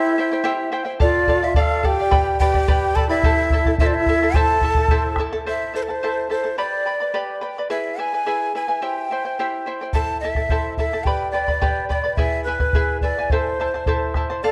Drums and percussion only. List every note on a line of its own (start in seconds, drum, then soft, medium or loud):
1.00 bombo low medium
1.27 bombo low medium
1.54 bombo low medium
1.84 bombo low medium
2.12 bombo low medium
2.40 bombo low medium
2.54 bombo low medium
2.68 bombo low medium
2.96 bombo low medium
3.23 bombo low medium
3.50 bombo low medium
3.65 bombo low medium
3.78 bombo low medium
4.06 bombo low medium
4.34 bombo low medium
4.61 bombo low medium
4.75 bombo low medium
4.88 bombo low medium
5.16 bombo rim medium
5.16 bombo low soft
9.93 bombo low medium
10.35 bombo low soft
10.49 bombo low medium
10.77 bombo low soft
11.05 bombo low medium
11.48 bombo low soft
11.62 bombo low medium
11.90 bombo low soft
12.17 bombo low medium
12.60 bombo low medium
12.73 bombo low medium
13.01 bombo low soft
13.30 bombo low medium
13.86 bombo low medium
14.14 bombo rim soft
14.14 bombo low soft